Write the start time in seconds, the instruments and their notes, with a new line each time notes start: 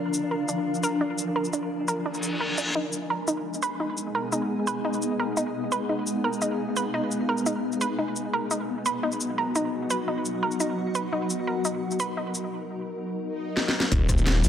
Already playing: synth drone F3 D4 A#4, synth arpeggio sound D4, ambient pad D4 A#4 F5 A#5
0.14 ambient pad G#5, shaker
0.31 synth arpeggio sound A#4
0.49 synth arpeggio sound D4, shaker
0.75 shaker
0.83 synth arpeggio sound A#4, shaker
1.01 synth arpeggio sound D4
1.18 shaker
1.36 synth arpeggio sound A#4
1.45 shaker
1.53 synth arpeggio sound D4, shaker
1.88 synth arpeggio sound A#4, shaker
2.06 synth arpeggio sound D4, reverse cymbal
2.14 shaker
2.23 shaker
2.40 synth arpeggio sound A#4
2.58 synth arpeggio sound D4, shaker
2.75 synth drone G#3 B3 D#4, ambient pad B3, synth arpeggio sound D#4
2.93 shaker
3.03 ambient pad G#4
3.10 synth arpeggio sound A#4
3.28 synth arpeggio sound D#4, shaker
3.35 ambient pad D#5
3.54 shaker
3.63 synth arpeggio sound B4, shaker
3.80 synth arpeggio sound D#4
3.98 shaker
4.15 synth arpeggio sound A#4
4.32 synth arpeggio sound D#4, shaker
4.67 synth arpeggio sound B4, shaker
4.85 synth arpeggio sound D#4
4.93 shaker
5.02 shaker
5.20 synth arpeggio sound A#4
5.37 synth arpeggio sound D#4, shaker
5.66 ambient pad F5
5.72 synth arpeggio sound B4, shaker
5.89 synth arpeggio sound D#4
6.07 shaker
6.24 synth arpeggio sound A#4
6.33 shaker
6.42 synth arpeggio sound D#4, shaker
6.76 synth arpeggio sound B4, shaker
6.94 synth arpeggio sound D#4
7.11 shaker
7.29 synth arpeggio sound A#4
7.38 shaker
7.46 synth arpeggio sound D#4, shaker
7.72 shaker
7.81 synth arpeggio sound B4, shaker
7.99 synth arpeggio sound D#4
8.16 shaker
8.33 synth drone F#3, synth arpeggio sound A#4
8.51 synth arpeggio sound D#4, ambient pad F#4, shaker
8.61 ambient pad D#5
8.86 synth arpeggio sound B4, shaker
8.98 ambient pad F#5
9.03 synth arpeggio sound D#4
9.12 shaker
9.21 shaker
9.38 synth arpeggio sound A#4
9.55 synth arpeggio sound D#4, shaker
9.90 synth arpeggio sound B4, shaker
10.08 synth arpeggio sound D#4
10.25 shaker
10.43 synth arpeggio sound A#4
10.52 shaker
10.60 synth arpeggio sound D#4, shaker
10.95 synth arpeggio sound B4, shaker
11.13 synth arpeggio sound D#4, synth drone A#4
11.30 shaker
11.47 synth arpeggio sound A#4
11.65 synth arpeggio sound D#4, shaker
11.91 shaker
12.00 synth arpeggio sound B4, shaker
12.17 synth arpeggio sound D#4
12.35 shaker
13.22 swell
13.57 snare
13.68 snare
13.80 snare
13.92 detuned saw bass D#1, ambient pad D#4, kick, closed hi-hat, impact
14.09 kick, cross-stick, closed hi-hat, shaker
14.18 closed hi-hat, shaker
14.27 snare, closed hi-hat
14.44 detuned saw bass A#1, closed hi-hat, shaker